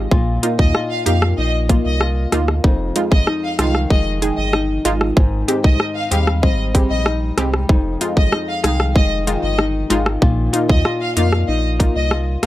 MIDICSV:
0, 0, Header, 1, 6, 480
1, 0, Start_track
1, 0, Key_signature, -4, "minor"
1, 0, Tempo, 631579
1, 87, Time_signature, 4, 2, 24, 8
1, 9470, End_track
2, 0, Start_track
2, 0, Title_t, "Violin section"
2, 0, Program_c, 0, 48
2, 447, Note_on_c, 0, 75, 78
2, 549, Note_off_c, 0, 75, 0
2, 686, Note_on_c, 0, 77, 82
2, 788, Note_off_c, 0, 77, 0
2, 807, Note_on_c, 0, 77, 75
2, 909, Note_off_c, 0, 77, 0
2, 1047, Note_on_c, 0, 75, 80
2, 1149, Note_off_c, 0, 75, 0
2, 1409, Note_on_c, 0, 75, 83
2, 1510, Note_off_c, 0, 75, 0
2, 2367, Note_on_c, 0, 75, 82
2, 2469, Note_off_c, 0, 75, 0
2, 2609, Note_on_c, 0, 77, 77
2, 2710, Note_off_c, 0, 77, 0
2, 2728, Note_on_c, 0, 77, 79
2, 2829, Note_off_c, 0, 77, 0
2, 2969, Note_on_c, 0, 75, 88
2, 3070, Note_off_c, 0, 75, 0
2, 3327, Note_on_c, 0, 75, 80
2, 3429, Note_off_c, 0, 75, 0
2, 4287, Note_on_c, 0, 75, 77
2, 4389, Note_off_c, 0, 75, 0
2, 4526, Note_on_c, 0, 77, 80
2, 4628, Note_off_c, 0, 77, 0
2, 4646, Note_on_c, 0, 77, 73
2, 4748, Note_off_c, 0, 77, 0
2, 4886, Note_on_c, 0, 75, 80
2, 4988, Note_off_c, 0, 75, 0
2, 5247, Note_on_c, 0, 75, 89
2, 5349, Note_off_c, 0, 75, 0
2, 6208, Note_on_c, 0, 75, 85
2, 6309, Note_off_c, 0, 75, 0
2, 6445, Note_on_c, 0, 77, 75
2, 6548, Note_off_c, 0, 77, 0
2, 6566, Note_on_c, 0, 77, 81
2, 6668, Note_off_c, 0, 77, 0
2, 6806, Note_on_c, 0, 75, 89
2, 6908, Note_off_c, 0, 75, 0
2, 7167, Note_on_c, 0, 75, 80
2, 7269, Note_off_c, 0, 75, 0
2, 8127, Note_on_c, 0, 75, 76
2, 8229, Note_off_c, 0, 75, 0
2, 8366, Note_on_c, 0, 77, 82
2, 8468, Note_off_c, 0, 77, 0
2, 8485, Note_on_c, 0, 77, 77
2, 8588, Note_off_c, 0, 77, 0
2, 8728, Note_on_c, 0, 75, 78
2, 8829, Note_off_c, 0, 75, 0
2, 9088, Note_on_c, 0, 75, 86
2, 9189, Note_off_c, 0, 75, 0
2, 9470, End_track
3, 0, Start_track
3, 0, Title_t, "Synth pluck"
3, 0, Program_c, 1, 84
3, 325, Note_on_c, 1, 58, 76
3, 326, Note_on_c, 1, 63, 68
3, 326, Note_on_c, 1, 65, 82
3, 423, Note_off_c, 1, 58, 0
3, 423, Note_off_c, 1, 63, 0
3, 423, Note_off_c, 1, 65, 0
3, 804, Note_on_c, 1, 58, 76
3, 805, Note_on_c, 1, 63, 68
3, 806, Note_on_c, 1, 67, 86
3, 902, Note_off_c, 1, 58, 0
3, 902, Note_off_c, 1, 63, 0
3, 903, Note_off_c, 1, 67, 0
3, 1286, Note_on_c, 1, 58, 75
3, 1287, Note_on_c, 1, 63, 68
3, 1288, Note_on_c, 1, 65, 81
3, 1383, Note_off_c, 1, 58, 0
3, 1383, Note_off_c, 1, 63, 0
3, 1384, Note_off_c, 1, 65, 0
3, 1766, Note_on_c, 1, 58, 89
3, 1766, Note_on_c, 1, 65, 96
3, 1767, Note_on_c, 1, 63, 81
3, 1863, Note_off_c, 1, 58, 0
3, 1863, Note_off_c, 1, 63, 0
3, 1863, Note_off_c, 1, 65, 0
3, 2248, Note_on_c, 1, 56, 75
3, 2248, Note_on_c, 1, 63, 69
3, 2249, Note_on_c, 1, 65, 81
3, 2344, Note_off_c, 1, 56, 0
3, 2344, Note_off_c, 1, 63, 0
3, 2344, Note_off_c, 1, 65, 0
3, 2727, Note_on_c, 1, 56, 77
3, 2727, Note_on_c, 1, 63, 70
3, 2729, Note_on_c, 1, 65, 88
3, 2823, Note_off_c, 1, 56, 0
3, 2823, Note_off_c, 1, 63, 0
3, 2824, Note_off_c, 1, 65, 0
3, 3207, Note_on_c, 1, 56, 74
3, 3207, Note_on_c, 1, 63, 68
3, 3209, Note_on_c, 1, 68, 80
3, 3303, Note_off_c, 1, 56, 0
3, 3303, Note_off_c, 1, 63, 0
3, 3304, Note_off_c, 1, 68, 0
3, 3686, Note_on_c, 1, 56, 91
3, 3686, Note_on_c, 1, 63, 83
3, 3687, Note_on_c, 1, 65, 99
3, 3783, Note_off_c, 1, 56, 0
3, 3783, Note_off_c, 1, 63, 0
3, 3783, Note_off_c, 1, 65, 0
3, 4165, Note_on_c, 1, 56, 75
3, 4166, Note_on_c, 1, 60, 68
3, 4167, Note_on_c, 1, 67, 85
3, 4262, Note_off_c, 1, 56, 0
3, 4263, Note_off_c, 1, 60, 0
3, 4263, Note_off_c, 1, 67, 0
3, 4644, Note_on_c, 1, 56, 79
3, 4646, Note_on_c, 1, 60, 69
3, 4646, Note_on_c, 1, 67, 82
3, 4742, Note_off_c, 1, 56, 0
3, 4743, Note_off_c, 1, 60, 0
3, 4743, Note_off_c, 1, 67, 0
3, 5125, Note_on_c, 1, 56, 73
3, 5127, Note_on_c, 1, 60, 67
3, 5127, Note_on_c, 1, 67, 80
3, 5222, Note_off_c, 1, 56, 0
3, 5223, Note_off_c, 1, 60, 0
3, 5223, Note_off_c, 1, 67, 0
3, 5606, Note_on_c, 1, 56, 88
3, 5606, Note_on_c, 1, 60, 81
3, 5607, Note_on_c, 1, 67, 99
3, 5703, Note_off_c, 1, 56, 0
3, 5703, Note_off_c, 1, 60, 0
3, 5703, Note_off_c, 1, 67, 0
3, 6086, Note_on_c, 1, 63, 66
3, 6087, Note_on_c, 1, 56, 72
3, 6088, Note_on_c, 1, 65, 85
3, 6183, Note_off_c, 1, 56, 0
3, 6183, Note_off_c, 1, 63, 0
3, 6184, Note_off_c, 1, 65, 0
3, 6563, Note_on_c, 1, 56, 76
3, 6564, Note_on_c, 1, 63, 71
3, 6564, Note_on_c, 1, 68, 84
3, 6661, Note_off_c, 1, 56, 0
3, 6662, Note_off_c, 1, 63, 0
3, 6662, Note_off_c, 1, 68, 0
3, 7045, Note_on_c, 1, 56, 75
3, 7046, Note_on_c, 1, 63, 67
3, 7047, Note_on_c, 1, 65, 81
3, 7142, Note_off_c, 1, 56, 0
3, 7143, Note_off_c, 1, 63, 0
3, 7143, Note_off_c, 1, 65, 0
3, 7524, Note_on_c, 1, 56, 93
3, 7525, Note_on_c, 1, 63, 82
3, 7525, Note_on_c, 1, 65, 97
3, 7622, Note_off_c, 1, 56, 0
3, 7622, Note_off_c, 1, 63, 0
3, 7622, Note_off_c, 1, 65, 0
3, 8002, Note_on_c, 1, 58, 76
3, 8003, Note_on_c, 1, 63, 69
3, 8003, Note_on_c, 1, 65, 84
3, 8101, Note_off_c, 1, 58, 0
3, 8101, Note_off_c, 1, 63, 0
3, 8101, Note_off_c, 1, 65, 0
3, 8485, Note_on_c, 1, 58, 74
3, 8487, Note_on_c, 1, 63, 70
3, 8487, Note_on_c, 1, 65, 83
3, 8582, Note_off_c, 1, 58, 0
3, 8583, Note_off_c, 1, 63, 0
3, 8583, Note_off_c, 1, 65, 0
3, 8964, Note_on_c, 1, 58, 70
3, 8965, Note_on_c, 1, 63, 70
3, 8965, Note_on_c, 1, 65, 80
3, 9062, Note_off_c, 1, 58, 0
3, 9062, Note_off_c, 1, 63, 0
3, 9062, Note_off_c, 1, 65, 0
3, 9445, Note_on_c, 1, 58, 90
3, 9445, Note_on_c, 1, 63, 84
3, 9447, Note_on_c, 1, 65, 101
3, 9470, Note_off_c, 1, 58, 0
3, 9470, Note_off_c, 1, 63, 0
3, 9470, Note_off_c, 1, 65, 0
3, 9470, End_track
4, 0, Start_track
4, 0, Title_t, "Nylon-string guitar"
4, 0, Program_c, 2, 24
4, 0, Note_on_c, 2, 41, 79
4, 0, Note_on_c, 2, 56, 61
4, 0, Note_on_c, 2, 60, 62
4, 0, Note_on_c, 2, 65, 66
4, 87, Note_on_c, 2, 46, 82
4, 88, Note_off_c, 2, 41, 0
4, 88, Note_off_c, 2, 65, 0
4, 91, Note_on_c, 2, 65, 68
4, 136, Note_off_c, 2, 56, 0
4, 136, Note_off_c, 2, 60, 0
4, 326, Note_on_c, 2, 63, 59
4, 564, Note_off_c, 2, 65, 0
4, 567, Note_on_c, 2, 65, 69
4, 808, Note_on_c, 2, 58, 62
4, 1045, Note_off_c, 2, 63, 0
4, 1048, Note_on_c, 2, 63, 63
4, 1279, Note_off_c, 2, 58, 0
4, 1288, Note_on_c, 2, 58, 61
4, 1525, Note_off_c, 2, 65, 0
4, 1528, Note_on_c, 2, 65, 68
4, 1758, Note_off_c, 2, 58, 0
4, 1767, Note_on_c, 2, 58, 61
4, 2007, Note_off_c, 2, 46, 0
4, 2007, Note_on_c, 2, 41, 78
4, 2008, Note_off_c, 2, 63, 0
4, 2011, Note_on_c, 2, 63, 67
4, 2055, Note_off_c, 2, 58, 0
4, 2247, Note_on_c, 2, 56, 60
4, 2485, Note_off_c, 2, 63, 0
4, 2488, Note_on_c, 2, 63, 67
4, 2511, Note_off_c, 2, 65, 0
4, 2729, Note_on_c, 2, 51, 61
4, 2967, Note_off_c, 2, 56, 0
4, 2970, Note_on_c, 2, 56, 63
4, 3207, Note_off_c, 2, 51, 0
4, 3210, Note_on_c, 2, 51, 62
4, 3445, Note_off_c, 2, 63, 0
4, 3448, Note_on_c, 2, 63, 70
4, 3685, Note_off_c, 2, 51, 0
4, 3688, Note_on_c, 2, 51, 59
4, 3925, Note_off_c, 2, 41, 0
4, 3928, Note_on_c, 2, 44, 79
4, 3929, Note_off_c, 2, 63, 0
4, 3932, Note_on_c, 2, 63, 68
4, 4166, Note_off_c, 2, 56, 0
4, 4169, Note_on_c, 2, 60, 60
4, 4404, Note_off_c, 2, 63, 0
4, 4407, Note_on_c, 2, 63, 68
4, 4646, Note_off_c, 2, 51, 0
4, 4649, Note_on_c, 2, 55, 59
4, 4885, Note_off_c, 2, 60, 0
4, 4888, Note_on_c, 2, 60, 62
4, 5117, Note_off_c, 2, 55, 0
4, 5126, Note_on_c, 2, 55, 59
4, 5363, Note_off_c, 2, 63, 0
4, 5366, Note_on_c, 2, 63, 69
4, 5598, Note_off_c, 2, 55, 0
4, 5607, Note_on_c, 2, 55, 62
4, 5843, Note_off_c, 2, 44, 0
4, 5846, Note_on_c, 2, 41, 83
4, 5848, Note_off_c, 2, 63, 0
4, 5851, Note_on_c, 2, 63, 67
4, 5895, Note_off_c, 2, 55, 0
4, 6083, Note_off_c, 2, 60, 0
4, 6086, Note_on_c, 2, 56, 59
4, 6323, Note_off_c, 2, 63, 0
4, 6326, Note_on_c, 2, 63, 66
4, 6566, Note_on_c, 2, 51, 60
4, 6798, Note_off_c, 2, 56, 0
4, 6807, Note_on_c, 2, 56, 63
4, 7043, Note_off_c, 2, 51, 0
4, 7046, Note_on_c, 2, 51, 60
4, 7284, Note_off_c, 2, 63, 0
4, 7287, Note_on_c, 2, 63, 66
4, 7525, Note_off_c, 2, 51, 0
4, 7528, Note_on_c, 2, 51, 62
4, 7766, Note_on_c, 2, 46, 84
4, 7767, Note_off_c, 2, 41, 0
4, 7771, Note_on_c, 2, 65, 69
4, 7815, Note_off_c, 2, 56, 0
4, 8003, Note_off_c, 2, 63, 0
4, 8006, Note_on_c, 2, 63, 59
4, 8244, Note_off_c, 2, 65, 0
4, 8247, Note_on_c, 2, 65, 65
4, 8270, Note_off_c, 2, 51, 0
4, 8487, Note_on_c, 2, 58, 61
4, 8724, Note_off_c, 2, 63, 0
4, 8727, Note_on_c, 2, 63, 61
4, 8957, Note_off_c, 2, 58, 0
4, 8966, Note_on_c, 2, 58, 63
4, 9204, Note_off_c, 2, 65, 0
4, 9207, Note_on_c, 2, 65, 68
4, 9438, Note_off_c, 2, 58, 0
4, 9470, Note_off_c, 2, 46, 0
4, 9470, Note_off_c, 2, 63, 0
4, 9470, Note_off_c, 2, 65, 0
4, 9470, End_track
5, 0, Start_track
5, 0, Title_t, "Sub bass"
5, 0, Program_c, 3, 38
5, 86, Note_on_c, 3, 34, 112
5, 297, Note_off_c, 3, 34, 0
5, 448, Note_on_c, 3, 39, 97
5, 553, Note_off_c, 3, 39, 0
5, 809, Note_on_c, 3, 41, 87
5, 1018, Note_off_c, 3, 41, 0
5, 1049, Note_on_c, 3, 34, 106
5, 1363, Note_off_c, 3, 34, 0
5, 1409, Note_on_c, 3, 36, 90
5, 1723, Note_off_c, 3, 36, 0
5, 1769, Note_on_c, 3, 38, 93
5, 1978, Note_off_c, 3, 38, 0
5, 2007, Note_on_c, 3, 29, 103
5, 2217, Note_off_c, 3, 29, 0
5, 2368, Note_on_c, 3, 32, 83
5, 2472, Note_off_c, 3, 32, 0
5, 2726, Note_on_c, 3, 36, 98
5, 2937, Note_off_c, 3, 36, 0
5, 2967, Note_on_c, 3, 29, 110
5, 3282, Note_off_c, 3, 29, 0
5, 3326, Note_on_c, 3, 31, 78
5, 3641, Note_off_c, 3, 31, 0
5, 3685, Note_on_c, 3, 32, 78
5, 3896, Note_off_c, 3, 32, 0
5, 3927, Note_on_c, 3, 32, 105
5, 4137, Note_off_c, 3, 32, 0
5, 4289, Note_on_c, 3, 36, 87
5, 4393, Note_off_c, 3, 36, 0
5, 4646, Note_on_c, 3, 39, 89
5, 4887, Note_on_c, 3, 32, 104
5, 4898, Note_off_c, 3, 39, 0
5, 5202, Note_off_c, 3, 32, 0
5, 5247, Note_on_c, 3, 34, 81
5, 5562, Note_off_c, 3, 34, 0
5, 5606, Note_on_c, 3, 36, 91
5, 5816, Note_off_c, 3, 36, 0
5, 5846, Note_on_c, 3, 29, 102
5, 6056, Note_off_c, 3, 29, 0
5, 6207, Note_on_c, 3, 32, 94
5, 6312, Note_off_c, 3, 32, 0
5, 6566, Note_on_c, 3, 36, 97
5, 6806, Note_on_c, 3, 29, 104
5, 6817, Note_off_c, 3, 36, 0
5, 7121, Note_off_c, 3, 29, 0
5, 7166, Note_on_c, 3, 31, 90
5, 7482, Note_off_c, 3, 31, 0
5, 7526, Note_on_c, 3, 32, 85
5, 7737, Note_off_c, 3, 32, 0
5, 7767, Note_on_c, 3, 34, 114
5, 7977, Note_off_c, 3, 34, 0
5, 8129, Note_on_c, 3, 39, 99
5, 8233, Note_off_c, 3, 39, 0
5, 8486, Note_on_c, 3, 41, 84
5, 8696, Note_off_c, 3, 41, 0
5, 8726, Note_on_c, 3, 34, 106
5, 9041, Note_off_c, 3, 34, 0
5, 9087, Note_on_c, 3, 36, 89
5, 9402, Note_off_c, 3, 36, 0
5, 9470, End_track
6, 0, Start_track
6, 0, Title_t, "Drums"
6, 87, Note_on_c, 9, 36, 117
6, 163, Note_off_c, 9, 36, 0
6, 328, Note_on_c, 9, 42, 77
6, 404, Note_off_c, 9, 42, 0
6, 448, Note_on_c, 9, 36, 88
6, 524, Note_off_c, 9, 36, 0
6, 567, Note_on_c, 9, 37, 93
6, 643, Note_off_c, 9, 37, 0
6, 808, Note_on_c, 9, 42, 71
6, 884, Note_off_c, 9, 42, 0
6, 928, Note_on_c, 9, 37, 96
6, 1004, Note_off_c, 9, 37, 0
6, 1288, Note_on_c, 9, 36, 95
6, 1288, Note_on_c, 9, 42, 66
6, 1364, Note_off_c, 9, 36, 0
6, 1364, Note_off_c, 9, 42, 0
6, 1525, Note_on_c, 9, 37, 101
6, 1601, Note_off_c, 9, 37, 0
6, 1766, Note_on_c, 9, 37, 89
6, 1766, Note_on_c, 9, 42, 66
6, 1842, Note_off_c, 9, 37, 0
6, 1842, Note_off_c, 9, 42, 0
6, 1887, Note_on_c, 9, 37, 93
6, 1963, Note_off_c, 9, 37, 0
6, 2007, Note_on_c, 9, 36, 114
6, 2083, Note_off_c, 9, 36, 0
6, 2247, Note_on_c, 9, 42, 76
6, 2323, Note_off_c, 9, 42, 0
6, 2368, Note_on_c, 9, 36, 91
6, 2444, Note_off_c, 9, 36, 0
6, 2487, Note_on_c, 9, 37, 91
6, 2563, Note_off_c, 9, 37, 0
6, 2727, Note_on_c, 9, 37, 101
6, 2727, Note_on_c, 9, 42, 68
6, 2803, Note_off_c, 9, 37, 0
6, 2803, Note_off_c, 9, 42, 0
6, 2847, Note_on_c, 9, 37, 93
6, 2923, Note_off_c, 9, 37, 0
6, 2967, Note_on_c, 9, 36, 96
6, 3043, Note_off_c, 9, 36, 0
6, 3209, Note_on_c, 9, 42, 65
6, 3285, Note_off_c, 9, 42, 0
6, 3445, Note_on_c, 9, 37, 100
6, 3521, Note_off_c, 9, 37, 0
6, 3687, Note_on_c, 9, 42, 72
6, 3763, Note_off_c, 9, 42, 0
6, 3807, Note_on_c, 9, 37, 91
6, 3883, Note_off_c, 9, 37, 0
6, 3927, Note_on_c, 9, 36, 122
6, 4003, Note_off_c, 9, 36, 0
6, 4168, Note_on_c, 9, 42, 75
6, 4244, Note_off_c, 9, 42, 0
6, 4289, Note_on_c, 9, 36, 92
6, 4365, Note_off_c, 9, 36, 0
6, 4407, Note_on_c, 9, 37, 89
6, 4483, Note_off_c, 9, 37, 0
6, 4648, Note_on_c, 9, 42, 73
6, 4724, Note_off_c, 9, 42, 0
6, 4768, Note_on_c, 9, 37, 96
6, 4844, Note_off_c, 9, 37, 0
6, 4887, Note_on_c, 9, 36, 93
6, 4963, Note_off_c, 9, 36, 0
6, 5128, Note_on_c, 9, 36, 94
6, 5128, Note_on_c, 9, 42, 68
6, 5204, Note_off_c, 9, 36, 0
6, 5204, Note_off_c, 9, 42, 0
6, 5364, Note_on_c, 9, 37, 100
6, 5440, Note_off_c, 9, 37, 0
6, 5605, Note_on_c, 9, 37, 94
6, 5606, Note_on_c, 9, 42, 70
6, 5681, Note_off_c, 9, 37, 0
6, 5682, Note_off_c, 9, 42, 0
6, 5727, Note_on_c, 9, 37, 94
6, 5803, Note_off_c, 9, 37, 0
6, 5846, Note_on_c, 9, 36, 121
6, 5922, Note_off_c, 9, 36, 0
6, 6088, Note_on_c, 9, 42, 78
6, 6164, Note_off_c, 9, 42, 0
6, 6208, Note_on_c, 9, 36, 86
6, 6284, Note_off_c, 9, 36, 0
6, 6326, Note_on_c, 9, 37, 98
6, 6402, Note_off_c, 9, 37, 0
6, 6567, Note_on_c, 9, 37, 94
6, 6567, Note_on_c, 9, 42, 71
6, 6643, Note_off_c, 9, 37, 0
6, 6643, Note_off_c, 9, 42, 0
6, 6687, Note_on_c, 9, 37, 92
6, 6763, Note_off_c, 9, 37, 0
6, 6807, Note_on_c, 9, 36, 96
6, 6883, Note_off_c, 9, 36, 0
6, 7048, Note_on_c, 9, 42, 67
6, 7124, Note_off_c, 9, 42, 0
6, 7285, Note_on_c, 9, 37, 98
6, 7361, Note_off_c, 9, 37, 0
6, 7527, Note_on_c, 9, 42, 66
6, 7603, Note_off_c, 9, 42, 0
6, 7647, Note_on_c, 9, 37, 96
6, 7723, Note_off_c, 9, 37, 0
6, 7767, Note_on_c, 9, 36, 114
6, 7843, Note_off_c, 9, 36, 0
6, 8007, Note_on_c, 9, 42, 72
6, 8083, Note_off_c, 9, 42, 0
6, 8128, Note_on_c, 9, 36, 91
6, 8204, Note_off_c, 9, 36, 0
6, 8247, Note_on_c, 9, 37, 89
6, 8323, Note_off_c, 9, 37, 0
6, 8487, Note_on_c, 9, 42, 74
6, 8563, Note_off_c, 9, 42, 0
6, 8607, Note_on_c, 9, 37, 95
6, 8683, Note_off_c, 9, 37, 0
6, 8968, Note_on_c, 9, 36, 96
6, 8969, Note_on_c, 9, 42, 70
6, 9044, Note_off_c, 9, 36, 0
6, 9045, Note_off_c, 9, 42, 0
6, 9205, Note_on_c, 9, 37, 101
6, 9281, Note_off_c, 9, 37, 0
6, 9446, Note_on_c, 9, 37, 86
6, 9447, Note_on_c, 9, 42, 70
6, 9470, Note_off_c, 9, 37, 0
6, 9470, Note_off_c, 9, 42, 0
6, 9470, End_track
0, 0, End_of_file